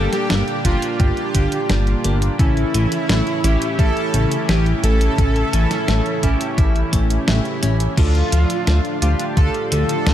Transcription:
Already playing: analog synth pad A#2 D3 G3 D4 G4, clean electric guitar G3, analog polysynth A#3 D4 G4, supersaw synth A4
0.13 supersaw synth G4, snare, closed hi-hat
0.30 analog synth bass G1, clean electric guitar A#3, snare, closed hi-hat
0.48 closed hi-hat
0.65 analog synth bass G1, analog polysynth A#3 D4 F4, supersaw synth F4, clean electric guitar G4, kick, closed hi-hat
0.82 closed hi-hat
1.00 analog synth bass G1, clean electric guitar G4, supersaw synth G4, kick, closed hi-hat
1.17 closed hi-hat
1.35 analog synth bass G1, clean electric guitar D3, kick, closed hi-hat
1.52 closed hi-hat
1.70 analog synth bass G1, clean electric guitar G3, snare, closed hi-hat
1.87 closed hi-hat
2.04 analog synth bass G1, clean electric guitar A#3, closed hi-hat
2.22 closed hi-hat
2.39 analog synth bass A1, analog synth pad A2 C#3 E3 C#4 E4, clean electric guitar C#3, analog polysynth C#4 E4 A4, supersaw synth E4, kick, closed hi-hat
2.57 closed hi-hat
2.74 analog synth bass A1, clean electric guitar E3, closed hi-hat
2.92 closed hi-hat
3.09 analog synth bass A1, clean electric guitar A3, snare, closed hi-hat
3.27 closed hi-hat
3.44 analog synth bass A1, analog polysynth C#4 E4 G4, clean electric guitar E4, closed hi-hat
3.62 closed hi-hat
3.79 analog synth bass A1, clean electric guitar E4, supersaw synth A4, kick, closed hi-hat
3.97 closed hi-hat
4.14 analog synth bass A1, clean electric guitar C#3, closed hi-hat
4.32 closed hi-hat
4.49 analog synth bass A1, clean electric guitar E3, supersaw synth G4, snare, closed hi-hat
4.66 closed hi-hat
4.84 analog synth bass A1, clean electric guitar A3, supersaw synth A4, closed hi-hat
5.01 closed hi-hat
5.18 analog synth bass A1, clean electric guitar C#3, analog polysynth C#4 E4 A4, kick, closed hi-hat
5.36 closed hi-hat
5.53 analog synth bass A1, clean electric guitar E3, closed hi-hat
5.71 snare, closed hi-hat
5.88 analog synth bass A1, clean electric guitar A3, snare, closed hi-hat
6.06 closed hi-hat
6.23 analog synth bass A1, analog polysynth C#4 E4 G4, clean electric guitar E4, kick, closed hi-hat
6.41 closed hi-hat
6.58 analog synth bass A1, clean electric guitar E4, kick, closed hi-hat
6.76 closed hi-hat
6.93 analog synth bass A1, clean electric guitar A3, kick, closed hi-hat
7.10 closed hi-hat
7.28 analog synth bass A1, clean electric guitar A3, snare, closed hi-hat
7.45 closed hi-hat
7.63 analog synth bass A1, clean electric guitar C#4, closed hi-hat
7.80 closed hi-hat
7.97 analog synth bass D2, analog synth pad A2 D3 F3 D4 F4, clean electric guitar D3, analog polysynth D4 F4 A4, supersaw synth F4, kick, closed hi-hat, crash
8.15 closed hi-hat
8.32 analog synth bass D2, clean electric guitar F3, closed hi-hat
8.50 closed hi-hat
8.67 analog synth bass D2, clean electric guitar A3, snare, closed hi-hat
8.85 closed hi-hat
9.02 analog synth bass D2, analog polysynth D4 F4 G4, clean electric guitar F4, closed hi-hat
9.20 closed hi-hat
9.37 analog synth bass D2, clean electric guitar F4, supersaw synth A4, kick, closed hi-hat
9.54 closed hi-hat
9.72 analog synth bass D2, clean electric guitar D3, supersaw synth A4, closed hi-hat
9.89 closed hi-hat
10.07 analog synth bass D2, clean electric guitar F3, snare, closed hi-hat

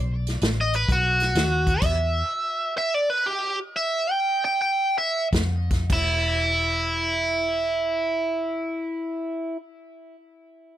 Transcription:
Already playing: fingered electric bass B1
0.27 snare, closed hi-hat
0.41 fingered electric bass A1, snare, closed hi-hat
0.61 overdriven electric guitar D#5
0.73 overdriven electric guitar B4, closed hi-hat
0.89 fingered electric bass B1, overdriven electric guitar F#4, kick, closed hi-hat
1.20 snare, closed hi-hat
1.35 fingered electric bass D#2, snare, closed hi-hat
1.67 kick, closed hi-hat
1.82 fingered electric bass E2, overdriven electric guitar E5, kick, closed hi-hat, crash
2.78 overdriven electric guitar E5
2.94 overdriven electric guitar D5
3.10 overdriven electric guitar B4
3.26 overdriven electric guitar G4
3.76 overdriven electric guitar E5
4.11 overdriven electric guitar G5
4.45 overdriven electric guitar G5
4.62 overdriven electric guitar G5
4.98 overdriven electric guitar E5
5.33 fingered electric bass F2, kick, snare, closed hi-hat
5.71 kick, snare, closed hi-hat
5.90 fingered electric bass E1, overdriven electric guitar E4, kick, crash

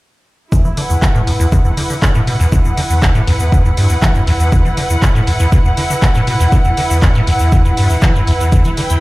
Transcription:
0.52 acid bass E2, string section E4, kick, shaker
0.65 acid bass E3, shaker
0.77 acid bass D3, string section B4 F#5, open hi-hat
0.90 acid bass E2, shaker
1.02 acid bass G2, kick, clap, shaker
1.15 acid bass A2, shaker
1.27 acid bass E2, open hi-hat
1.40 acid bass E2, shaker
1.52 acid bass E2, kick, shaker
1.65 acid bass E2, shaker
1.77 acid bass D3, open hi-hat
1.90 acid bass D3, shaker
2.02 acid bass G2, kick, clap, shaker
2.15 acid bass A2, shaker
2.27 acid bass B2, open hi-hat
2.40 acid bass E2, shaker
2.52 acid bass E2, kick, shaker
2.65 acid bass E2, shaker
2.77 acid bass D3, open hi-hat
2.90 acid bass E2, shaker
3.02 kick, clap, shaker
3.15 acid bass A2, shaker
3.27 acid bass E2, open hi-hat
3.40 acid bass E2, shaker
3.52 acid bass E2, kick, shaker
3.65 acid bass E2, shaker
3.77 acid bass G2, open hi-hat
3.89 acid bass E2, shaker
4.02 acid bass E3, kick, clap, shaker
4.15 acid bass F#2, shaker
4.27 acid bass E2, open hi-hat
4.40 acid bass E2, shaker
4.52 acid bass E2, kick, shaker
4.65 acid bass E3, shaker
4.77 acid bass D3, open hi-hat
4.90 acid bass E2, shaker
5.02 acid bass G2, kick, clap, shaker
5.15 acid bass A2, shaker
5.27 acid bass E2, open hi-hat
5.40 acid bass E2, shaker
5.52 acid bass E2, kick, shaker
5.65 acid bass E2, shaker
5.77 acid bass D3, open hi-hat
5.90 acid bass D3, shaker
6.02 acid bass G2, kick, clap, shaker
6.15 acid bass A2, shaker
6.27 acid bass B2, open hi-hat
6.40 acid bass E2, shaker
6.52 acid bass E2, kick, shaker
6.65 acid bass E2, shaker
6.77 acid bass D3, open hi-hat
6.90 acid bass E2, shaker
7.02 acid bass E2, kick, clap, shaker
7.15 acid bass A2, shaker
7.27 acid bass E2, open hi-hat
7.39 acid bass E2, shaker
7.52 kick, shaker
7.65 acid bass E2, shaker
7.77 acid bass G2, open hi-hat
7.90 acid bass E2, shaker
8.02 acid bass E3, kick, clap, shaker
8.15 acid bass F#2, shaker
8.27 acid bass E2, open hi-hat
8.40 acid bass E2, shaker
8.52 acid bass E2, kick, closed hi-hat, shaker
8.64 acid bass E3, closed hi-hat, shaker
8.77 acid bass D3, string section G5, open hi-hat
8.90 acid bass E2, closed hi-hat, shaker

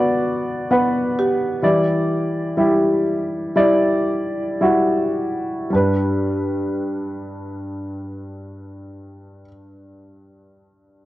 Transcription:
Already playing: grand piano D3 B3 F#4 B4 D5, marimba F#4
0.70 grand piano B3 B4 F#5
1.19 marimba G4
1.62 grand piano E3 G3 E4 D5
2.57 grand piano G3 E4 G4
3.56 grand piano G3 E4 D5
4.61 grand piano G3 E4 F#4
5.70 grand piano G2 G3 D4
5.75 marimba G4, grand piano B4

